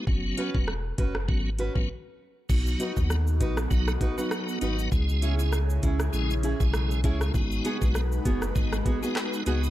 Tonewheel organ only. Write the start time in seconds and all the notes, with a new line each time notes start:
0.07 F#3 B3 C#4 F#4
0.54 F#3 B3 C#4 F#4
1.28 F#3 B3 C#4 F#4
1.75 F#3 B3 C#4 F#4
2.49 F#3 B3 D#4 F#4
2.96 F#3 B3 D#4 F#4
3.70 F#3 B3 D#4 F#4
4.18 F#3 B3 D#4 F#4
4.61 F#3 B3 D#4 F#4
4.92 G#3 C#4 E4 G#4
5.39 G#3 C#4 E4 G#4
6.13 G#3 C#4 E4 G#4
6.60 G#3 C#4 E4 G#4
7.04 G#3 C#4 E4 G#4
7.34 G#3 B3 D#4 F#4
7.81 G#3 B3 D#4 F#4
8.55 G#3 B3 D#4 F#4
9.03 G#3 B3 D#4 F#4
9.46 G#3 B3 D#4 F#4